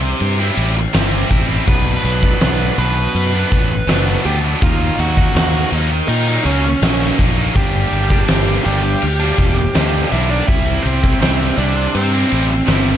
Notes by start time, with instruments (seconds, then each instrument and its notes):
Already playing: fingered electric bass C2, distorted electric guitar C3
0.02 muted distorted electric guitar stroke
0.20 fingered electric bass G2, ride
0.39 distorted electric guitar G3 C4 E4
0.57 fingered electric bass A1, ride
0.76 muted distorted electric guitar stroke
0.94 fingered electric bass G1, distorted electric guitar C3 G3 C4 E4, snare, ride
1.30 fingered electric bass A1, distorted electric guitar C3 G3 C4 E4, kick, ride
1.48 distorted electric guitar G3 C4 E4
1.66 fingered electric bass B1, distorted electric guitar B2 F#3 B3 D4, lead electric guitar B4 B5, kick, crash
2.04 fingered electric bass B1, ride
2.21 distorted electric guitar F#3 B3 D4, kick
2.41 fingered electric bass B1, distorted electric guitar B2 F#3 B3 D4, snare, ride
2.77 fingered electric bass B1, distorted electric guitar B2 F#3 B3 D4, lead electric guitar B4 B5, ride
2.96 muted distorted electric guitar stroke
3.15 fingered electric bass F#2, ride
3.33 distorted electric guitar F#3 B3 D4
3.52 fingered electric bass A1, kick, ride
3.70 muted distorted electric guitar stroke
3.87 fingered electric bass F#1, distorted electric guitar B2 F#3 B3, snare, ride
3.91 distorted electric guitar D4
4.25 fingered electric bass D2, distorted electric guitar B2 F#3 B3 D4, lead electric guitar G4 G5, ride
4.43 distorted electric guitar F#3 B3 D4
4.62 fingered electric bass D#2, distorted electric guitar D#3 F#3 A#3 D#4, lead electric guitar F4 F5, kick, ride
4.99 fingered electric bass D#2, lead electric guitar F#4 F#5, ride
5.17 distorted electric guitar F#3 A#3 D#4, kick
5.35 fingered electric bass D#2, distorted electric guitar D#3 F#3 A#3 D#4, snare, ride
5.72 fingered electric bass D#2, distorted electric guitar D#3 F#3 A#3 D#4, ride
5.92 muted distorted electric guitar stroke
6.08 fingered electric bass A#2, lead electric guitar D#4 D#5, ride
6.28 distorted electric guitar F#3 A#3 D#4
6.45 fingered electric bass C#2, lead electric guitar C#4 C#5, ride
6.65 muted distorted electric guitar stroke
6.82 fingered electric bass A#1, distorted electric guitar D#3 F#3 A#3 D#4, snare, ride
7.19 fingered electric bass A#1, distorted electric guitar D#3 F#3 A#3 D#4, kick, snare, ride
7.37 distorted electric guitar F#3 A#3 D#4
7.55 fingered electric bass G1, distorted electric guitar G2 D3 G3 A#3 D4, lead electric guitar G4 G5, kick, ride
7.92 fingered electric bass G1, ride
8.10 distorted electric guitar G3 A#3 D4, kick
8.28 fingered electric bass G1, distorted electric guitar G2 D3 G3 A#3 D4, snare, ride
8.64 fingered electric bass G1, distorted electric guitar D3 G3 A#3 D4, lead electric guitar G4 G5, ride
8.84 muted distorted electric guitar stroke
9.02 fingered electric bass D2, ride
9.20 distorted electric guitar G3 A#3 D4
9.38 fingered electric bass E1, kick, ride
9.57 muted distorted electric guitar stroke
9.75 fingered electric bass D2, distorted electric guitar G2 D3 G3 A#3 D4, snare, ride
10.11 fingered electric bass B1, distorted electric guitar D3 G3 A#3 D4, lead electric guitar E4 E5, snare, ride
10.29 distorted electric guitar G3 A#3 D4, lead electric guitar D4 D5
10.47 fingered electric bass C2, distorted electric guitar C3 G3 C4 E4, lead electric guitar E4 E5, kick, ride
10.83 fingered electric bass C2, lead electric guitar C4 C5, ride
11.02 distorted electric guitar G3 C4 E4, kick
11.20 fingered electric bass C2, distorted electric guitar C3 G3 C4 E4, lead electric guitar C4 C5, snare, ride
11.56 fingered electric bass C2, distorted electric guitar C3 G3 C4 E4, lead electric guitar D4 D5, ride
11.75 muted distorted electric guitar stroke
11.95 fingered electric bass G2, lead electric guitar C4 C5, ride
12.11 distorted electric guitar G3 C4 E4
12.31 fingered electric bass A1, ride
12.49 muted distorted electric guitar stroke
12.67 fingered electric bass G1, distorted electric guitar C3 G3 C4 E4, snare, ride